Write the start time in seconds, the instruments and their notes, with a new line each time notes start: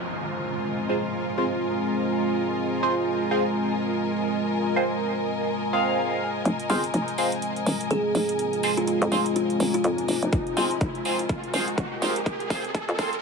Already playing: ambient pad G#3 C4 F4 C5, string section F4 A#4 D#5 G#5, downlifter
0.89 synth stab C4 F4 G#4 C5
1.38 synth stab C4 F4 G#4 C5
2.58 ambient pad A#4
2.83 synth stab C4 F4 G#4 C5
3.31 synth stab C4 F4 G#4 C5
4.76 synth stab C4 F4 G#4 C5
5.73 synth stab C4 F4 G#4 F5
6.45 fm bass F1, ambient pad G#3 C4 F4 C5, closed hi-hat, riser
6.60 closed hi-hat
6.70 fm bass G1, synth stab C4 F4 G#4 C5, open hi-hat
6.84 closed hi-hat
6.94 fm bass F1, closed hi-hat
7.08 closed hi-hat
7.18 synth stab C4 F4 G#4 C5, open hi-hat
7.32 closed hi-hat
7.42 closed hi-hat
7.56 closed hi-hat
7.66 fm bass D#1, open hi-hat
7.81 closed hi-hat
7.91 fm bass D#1, kalimba G#4, closed hi-hat
8.15 fm bass F1, open hi-hat
8.29 closed hi-hat
8.39 closed hi-hat
8.53 closed hi-hat
8.63 synth stab C4 F4 G#4 C5, open hi-hat
8.77 kalimba F4, closed hi-hat
8.87 kalimba F4, closed hi-hat
9.02 fm bass F2, closed hi-hat
9.12 fm bass F1, synth stab C4 F4 G#4 C5, open hi-hat
9.26 closed hi-hat
9.36 kalimba F4, closed hi-hat
9.50 closed hi-hat
9.60 fm bass D#1, open hi-hat
9.74 kalimba F4, closed hi-hat
9.84 fm bass F2, kalimba F4, closed hi-hat
9.98 closed hi-hat
10.08 fm bass F1, open hi-hat
10.22 fm bass F1, closed hi-hat
10.33 fm bass F1, ambient pad A#4, kick, closed hi-hat
10.47 closed hi-hat
10.57 fm bass G1, synth stab C4 F4 G#4 C5, open hi-hat
10.71 closed hi-hat
10.81 fm bass F1, kick, closed hi-hat
10.95 closed hi-hat
11.05 synth stab C4 F4 G#4 C5, open hi-hat
11.19 closed hi-hat
11.29 kick, closed hi-hat
11.44 closed hi-hat
11.54 fm bass D#1, synth stab C4 F4 G#4 C5, open hi-hat
11.68 closed hi-hat
11.78 fm bass D#1, kick, closed hi-hat
12.02 fm bass F1, synth stab C4 F4 G#4 C5, open hi-hat
12.16 closed hi-hat
12.26 kick, closed hi-hat
12.40 closed hi-hat
12.50 synth stab C4 F4 G#4 C5, kick, open hi-hat
12.64 closed hi-hat
12.75 kick, closed hi-hat
12.89 fm bass F2, closed hi-hat
12.99 fm bass F1, synth stab C4 F4 G#4 C5, kick, open hi-hat
13.13 closed hi-hat